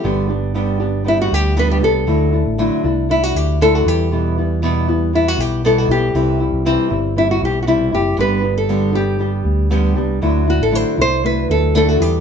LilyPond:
<<
  \new Staff \with { instrumentName = "Nylon-string guitar" } { \time 4/4 \key g \major \tempo 4 = 118 g'2 e'16 fis'16 g'8 b'16 g'16 a'8~ | a'2 e'16 fis'16 g'8 a'16 fis'16 g'8~ | g'2 e'16 fis'16 g'8 a'16 fis'16 g'8~ | g'2 e'16 fis'16 g'16. fis'32 e'8 g'8 |
b'8. a'8. g'4 r4. | r8 fis'16 a'16 c''8 c''8 b'8 a'8 a'16 fis'16 g'8 | }
  \new Staff \with { instrumentName = "Nylon-string guitar" } { \time 4/4 \key g \major <g, d g b d' g'>8 <g b d' g'>8 <g, d g b d' g'>8 <g b d' g'>8 <g b d' g'>4 <g, d g b d' g'>8 <g b d' g'>8 | <d fis a d' e'>8 <a d' e'>8 <d fis a d' e'>8 <a d' e'>8 <fis a d' e'>4 <d fis a d' e'>8 <e g b e'>8 | <e, b, e g b e'>8 <e g b e'>8 <e, b, e g b e'>8 <e g b e'>8 <e g b e'>4 <e, b, e g b e'>8 <e g b e'>8 | <c e g c' e'>8 <g c' e'>8 <c e g c' e'>8 <g c' e'>8 <e g c' e'>4 <c e g c' e'>8 <g c' e'>8 |
<g, d g b d' g'>8 <g b d' g'>8 <g, d g b d' g'>8 <g b d' g'>8 <g b d' g'>4 <g, d g b d' g'>8 <g b d' g'>8 | <d fis a d' e'>8 <a d' e'>8 <d fis a d' e'>8 <a d' e'>8 <fis a d' e'>4 <d fis a d' e'>8 <e g b e'>8 | }
  \new Staff \with { instrumentName = "Fingered electric bass" } { \clef bass \time 4/4 \key g \major g,,2~ g,,8 d,4 c,8 | d,8. a,,8 r16 c,4 d,4 e,8~ | e,2~ e,8 b,,4 b,,8 | c,8. c,8 r16 g,,4 b,,4 fis,,8 |
g,,2~ g,,8 d,4 c,8 | d,8. a,,8 r16 c,4 d,4 e,8 | }
>>